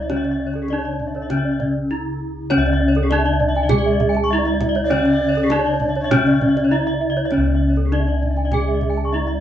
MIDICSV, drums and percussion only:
0, 0, Header, 1, 2, 480
1, 0, Start_track
1, 0, Tempo, 601926
1, 77, Time_signature, 4, 2, 24, 8
1, 7498, End_track
2, 0, Start_track
2, 0, Title_t, "Kendang"
2, 77, Note_on_c, 9, 63, 31
2, 156, Note_off_c, 9, 63, 0
2, 195, Note_on_c, 9, 62, 13
2, 275, Note_off_c, 9, 62, 0
2, 427, Note_on_c, 9, 62, 12
2, 507, Note_off_c, 9, 62, 0
2, 545, Note_on_c, 9, 63, 20
2, 624, Note_off_c, 9, 63, 0
2, 668, Note_on_c, 9, 62, 10
2, 748, Note_off_c, 9, 62, 0
2, 794, Note_on_c, 9, 64, 26
2, 874, Note_off_c, 9, 64, 0
2, 915, Note_on_c, 9, 62, 9
2, 995, Note_off_c, 9, 62, 0
2, 1036, Note_on_c, 9, 63, 36
2, 1036, Note_on_c, 9, 64, 35
2, 1116, Note_off_c, 9, 63, 0
2, 1116, Note_off_c, 9, 64, 0
2, 1275, Note_on_c, 9, 64, 40
2, 1355, Note_off_c, 9, 64, 0
2, 1997, Note_on_c, 9, 63, 59
2, 2077, Note_off_c, 9, 63, 0
2, 2121, Note_on_c, 9, 62, 23
2, 2201, Note_off_c, 9, 62, 0
2, 2353, Note_on_c, 9, 62, 25
2, 2433, Note_off_c, 9, 62, 0
2, 2478, Note_on_c, 9, 63, 49
2, 2558, Note_off_c, 9, 63, 0
2, 2593, Note_on_c, 9, 62, 23
2, 2673, Note_off_c, 9, 62, 0
2, 2712, Note_on_c, 9, 64, 50
2, 2791, Note_off_c, 9, 64, 0
2, 2835, Note_on_c, 9, 62, 20
2, 2914, Note_off_c, 9, 62, 0
2, 2944, Note_on_c, 9, 63, 53
2, 2944, Note_on_c, 9, 64, 85
2, 3024, Note_off_c, 9, 63, 0
2, 3024, Note_off_c, 9, 64, 0
2, 3190, Note_on_c, 9, 64, 63
2, 3270, Note_off_c, 9, 64, 0
2, 3307, Note_on_c, 9, 62, 25
2, 3387, Note_off_c, 9, 62, 0
2, 3550, Note_on_c, 9, 62, 22
2, 3629, Note_off_c, 9, 62, 0
2, 3673, Note_on_c, 9, 63, 50
2, 3673, Note_on_c, 9, 64, 58
2, 3753, Note_off_c, 9, 63, 0
2, 3753, Note_off_c, 9, 64, 0
2, 3788, Note_on_c, 9, 62, 22
2, 3868, Note_off_c, 9, 62, 0
2, 3912, Note_on_c, 9, 63, 60
2, 3992, Note_off_c, 9, 63, 0
2, 4031, Note_on_c, 9, 62, 27
2, 4110, Note_off_c, 9, 62, 0
2, 4267, Note_on_c, 9, 62, 23
2, 4347, Note_off_c, 9, 62, 0
2, 4385, Note_on_c, 9, 63, 57
2, 4465, Note_off_c, 9, 63, 0
2, 4504, Note_on_c, 9, 62, 20
2, 4584, Note_off_c, 9, 62, 0
2, 4624, Note_on_c, 9, 64, 53
2, 4704, Note_off_c, 9, 64, 0
2, 4747, Note_on_c, 9, 62, 16
2, 4827, Note_off_c, 9, 62, 0
2, 4874, Note_on_c, 9, 63, 64
2, 4874, Note_on_c, 9, 64, 82
2, 4954, Note_off_c, 9, 63, 0
2, 4954, Note_off_c, 9, 64, 0
2, 4996, Note_on_c, 9, 62, 22
2, 5076, Note_off_c, 9, 62, 0
2, 5114, Note_on_c, 9, 64, 60
2, 5194, Note_off_c, 9, 64, 0
2, 5238, Note_on_c, 9, 62, 25
2, 5318, Note_off_c, 9, 62, 0
2, 5478, Note_on_c, 9, 62, 20
2, 5558, Note_off_c, 9, 62, 0
2, 5716, Note_on_c, 9, 62, 19
2, 5795, Note_off_c, 9, 62, 0
2, 5826, Note_on_c, 9, 63, 32
2, 5905, Note_off_c, 9, 63, 0
2, 5949, Note_on_c, 9, 62, 13
2, 6029, Note_off_c, 9, 62, 0
2, 6191, Note_on_c, 9, 62, 14
2, 6270, Note_off_c, 9, 62, 0
2, 6318, Note_on_c, 9, 63, 29
2, 6398, Note_off_c, 9, 63, 0
2, 6439, Note_on_c, 9, 62, 13
2, 6518, Note_off_c, 9, 62, 0
2, 6560, Note_on_c, 9, 64, 27
2, 6640, Note_off_c, 9, 64, 0
2, 6672, Note_on_c, 9, 62, 13
2, 6752, Note_off_c, 9, 62, 0
2, 6791, Note_on_c, 9, 63, 33
2, 6791, Note_on_c, 9, 64, 50
2, 6871, Note_off_c, 9, 63, 0
2, 6871, Note_off_c, 9, 64, 0
2, 7027, Note_on_c, 9, 64, 38
2, 7106, Note_off_c, 9, 64, 0
2, 7150, Note_on_c, 9, 62, 14
2, 7229, Note_off_c, 9, 62, 0
2, 7392, Note_on_c, 9, 62, 14
2, 7471, Note_off_c, 9, 62, 0
2, 7498, End_track
0, 0, End_of_file